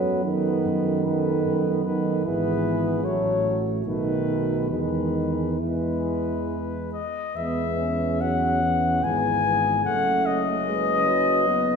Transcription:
0.00 0.56 F#2 medium
0.00 0.25 F#3 medium
0.00 0.23 B3 soft
0.00 0.24 A4 soft
0.00 0.25 B4 soft
0.25 1.82 D#3 medium
0.25 1.03 B3 soft
0.25 1.03 A4 soft
0.25 1.03 B4 soft
0.65 1.36 F#2 medium
1.04 1.83 B3 soft
1.04 1.84 A4 soft
1.04 1.84 B4 soft
1.46 2.17 F#2 medium
1.85 2.27 D#3 medium
1.85 2.24 B3 soft
1.85 2.24 A4 soft
1.85 2.24 B4 soft
2.25 3.00 G#1 medium
2.25 3.03 E3 medium
2.25 3.00 B3 medium
2.25 3.00 G#4 medium
2.25 3.07 B4 medium
3.03 3.84 A1 medium
3.03 3.56 F#3 medium
3.03 3.84 A3 medium
3.03 3.85 F#4 soft
3.03 3.71 C#5 soft
3.85 4.73 B1 soft
3.85 4.67 D#3 medium
3.85 4.69 A3 soft
3.85 4.70 F#4 soft
3.85 4.70 B4 medium
4.70 7.03 E2 soft
4.70 5.61 D#3 medium
4.70 5.42 G#3 soft
4.70 5.60 G#4 soft
4.70 5.58 B4 soft
5.59 6.92 E3 soft
5.59 6.99 G#3 soft
5.59 7.00 G#4 soft
5.59 6.90 B4 soft
6.93 7.38 D#5 medium
7.34 9.04 E2 medium
7.34 8.23 G#3 soft
7.34 7.75 B3 soft
7.34 8.17 B4 soft
7.34 8.22 E5 medium
7.78 9.03 C#4 soft
8.21 8.63 F#3 soft
8.21 9.02 G#4 soft
8.21 9.05 F#5 medium
8.62 9.85 E3 soft
9.02 9.84 G#1 soft
9.02 9.42 B3 medium
9.02 9.84 G#4 soft
9.02 9.84 G#5 medium
9.43 9.84 B3 medium
9.84 11.76 F#1 medium
9.84 10.69 A3 medium
9.84 11.47 C#4 medium
9.84 10.67 A4 soft
9.84 10.28 F#5 medium
10.26 11.76 D#5 medium
10.67 11.08 G#3 medium
10.67 11.76 B4 medium
11.07 11.48 F#3 medium
11.46 11.76 B3 medium

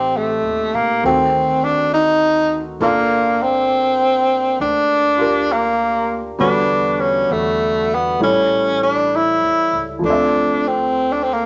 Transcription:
0.00 0.40 A1 medium
0.00 0.18 C4 medium
0.00 1.01 C4 soft
0.00 1.03 D#4 soft
0.00 1.05 G4 soft
0.00 1.03 A4 soft
0.17 0.76 A3 medium
0.43 0.71 D#2 soft
0.74 1.01 A2 medium
0.74 1.04 A#3 medium
1.03 2.77 D2 medium
1.03 2.82 D#3 soft
1.03 2.81 C4 soft
1.03 1.66 C4 medium
1.03 2.82 F#4 soft
1.03 2.80 A4 soft
1.64 1.93 D4 medium
1.94 2.63 D#4 medium
2.80 4.56 G1 medium
2.80 6.39 A#3 soft
2.80 3.44 A#3 medium
2.80 6.40 D4 soft
2.80 5.16 F4 soft
2.80 6.40 A4 medium
3.42 4.60 C4 medium
4.60 6.35 D2 medium
4.60 5.54 D4 medium
5.17 6.38 F4 soft
5.17 6.39 G4 soft
5.17 6.40 A#4 soft
5.52 6.26 A#3 medium
6.38 7.25 E2 medium
6.38 8.21 D3 soft
6.38 8.18 G3 soft
6.38 8.20 B3 soft
6.38 7.02 D4 medium
6.38 8.21 F#4 medium
7.00 7.33 C#4 medium
7.29 8.16 E2 medium
7.29 7.96 A3 medium
7.94 8.23 B3 medium
8.19 9.38 A1 medium
8.19 10.03 G3 soft
8.19 10.01 A3 soft
8.19 10.04 E4 soft
8.19 10.04 C#5 soft
8.23 8.79 C#4 medium
8.83 9.17 D4 medium
9.16 9.90 E4 medium
9.42 9.71 E2 soft
9.73 10.01 C#2 soft
9.99 11.46 F3 soft
9.99 11.46 A3 soft
10.03 11.46 D2 medium
10.03 11.46 C4 soft
10.03 10.69 D4 medium
10.10 11.46 E5 soft
10.68 11.14 C4 medium
11.12 11.25 D4 medium
11.23 11.35 C4 medium
11.33 11.46 A#3 medium

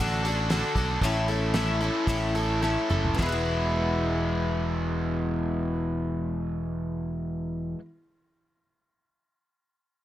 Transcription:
0.00 0.62 A1 medium
0.00 0.25 D3 medium
0.00 0.24 D4 medium
0.00 0.24 F#4 medium
0.00 0.23 A4 medium
0.00 open hi-hat medium
0.24 0.48 D3 medium
0.24 0.49 D4 medium
0.24 0.50 F#4 medium
0.24 0.50 A4 medium
0.24 open hi-hat soft
0.50 0.99 D3 medium
0.50 0.75 D4 medium
0.50 0.75 F#4 medium
0.50 0.74 A4 medium
0.50 snare medium
0.50 open hi-hat medium
0.75 0.97 B1 medium
0.75 1.00 D4 soft
0.75 1.00 F#4 medium
0.75 0.99 A4 medium
0.75 kick medium
0.75 open hi-hat soft
1.01 1.89 A1 medium
1.01 1.53 A2 medium
1.01 1.52 A3 medium
1.01 1.28 C#4 medium
1.01 1.28 E4 medium
1.01 1.26 A4 loud
1.01 kick medium
1.01 open hi-hat medium
1.27 1.53 C#4 soft
1.27 1.54 E4 medium
1.27 1.54 A4 medium
1.27 open hi-hat soft
1.53 1.81 A3 medium
1.53 1.81 C#4 medium
1.53 1.80 E4 medium
1.53 1.80 A4 medium
1.53 snare medium
1.53 open hi-hat medium
1.81 2.36 A2 medium
1.81 2.06 A3 medium
1.81 2.06 C#4 medium
1.81 2.07 E4 medium
1.81 2.07 A4 medium
1.81 open hi-hat soft
2.07 2.76 A1 medium
2.07 2.35 A2 medium
2.07 2.35 A3 medium
2.07 2.35 C#4 medium
2.07 2.34 E4 medium
2.07 2.34 A4 medium
2.07 kick medium
2.07 open hi-hat medium
2.35 2.91 A2 medium
2.35 2.61 A3 medium
2.35 2.61 C#4 medium
2.35 2.62 E4 medium
2.35 2.62 A4 medium
2.35 open hi-hat soft
2.62 3.17 A3 medium
2.62 2.90 C#4 medium
2.62 2.90 E4 medium
2.62 2.89 A4 medium
2.62 snare soft
2.90 3.14 F#1 medium
2.90 3.18 C#4 soft
2.90 3.17 E4 soft
2.90 3.17 A4 medium
2.90 mid tom medium
3.05 floor tom medium
3.18 7.74 E1 medium
3.18 7.77 E2 medium
3.18 7.78 B2 medium
3.18 7.79 E3 medium
3.18 7.80 G#3 medium
3.18 7.80 B3 medium
3.18 kick medium
3.18 snare medium
3.18 ride bell medium
3.22 7.85 B3 medium
3.22 7.81 E4 medium
3.29 7.91 E4 medium
3.29 7.88 F#4 medium

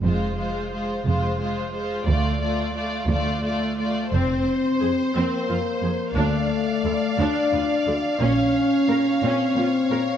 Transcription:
0.03 0.92 F1 soft
0.03 0.92 F2 soft
0.03 0.36 G#3 soft
0.03 0.36 F4 soft
0.03 0.36 C5 soft
0.37 0.71 G#3 soft
0.37 0.71 F4 soft
0.37 0.70 C5 soft
0.71 1.05 G#3 soft
0.71 1.04 F4 soft
0.71 1.05 C5 soft
1.05 1.93 F1 soft
1.05 1.94 F2 soft
1.05 1.38 G#3 soft
1.05 1.39 F4 soft
1.05 1.38 C5 soft
1.39 1.72 G#3 soft
1.39 1.73 F4 soft
1.39 1.72 C5 soft
1.73 2.07 G#3 soft
1.73 2.07 F4 soft
1.73 2.06 C5 soft
2.06 2.94 D2 medium
2.06 2.95 D2 soft
2.06 2.40 A3 soft
2.06 2.41 F4 soft
2.06 2.40 D5 soft
2.41 2.74 A3 soft
2.41 2.75 F4 soft
2.41 2.74 D5 soft
2.75 3.08 A3 soft
2.75 3.09 F4 soft
2.75 3.08 D5 soft
3.08 3.98 D2 medium
3.08 3.43 A3 soft
3.08 3.43 F4 soft
3.08 3.43 D5 soft
3.44 3.78 A3 soft
3.44 3.77 F4 soft
3.44 3.78 D5 soft
3.79 4.12 A3 soft
3.79 4.12 F4 soft
3.79 4.12 D5 soft
4.11 4.43 F1 soft
4.11 4.21 F2 soft
4.11 4.44 C4 soft
4.11 5.11 C4 medium
4.11 6.12 C5 soft
4.81 4.89 F2 soft
4.81 4.89 G#4 soft
5.14 5.23 F2 soft
5.14 6.14 A#3 soft
5.14 5.46 C4 soft
5.49 5.57 F2 soft
5.49 5.57 F4 soft
5.82 5.90 F2 soft
5.82 5.90 G#4 soft
6.15 6.47 D2 soft
6.15 6.23 D2 soft
6.15 7.20 A3 soft
6.15 6.47 D4 soft
6.15 8.21 D5 soft
6.15 10.17 F5 soft
6.84 6.93 D2 soft
6.84 6.92 A4 soft
7.19 7.27 D2 soft
7.19 8.19 D4 soft
7.19 7.51 D4 soft
7.53 7.61 D2 soft
7.53 7.61 F4 soft
7.87 7.95 D2 soft
7.87 7.95 A4 soft
8.20 8.52 A#1 soft
8.20 8.28 A#2 soft
8.20 8.52 C#4 soft
8.20 9.20 C#4 medium
8.20 10.17 C#5 soft
8.88 8.96 A#2 soft
8.88 8.97 A#4 soft
9.22 9.30 A#2 soft
9.22 10.17 C4 medium
9.22 9.55 C#4 soft
9.56 9.64 A#2 soft
9.56 9.65 F4 soft
9.90 9.98 A#2 soft
9.90 9.99 A#4 soft

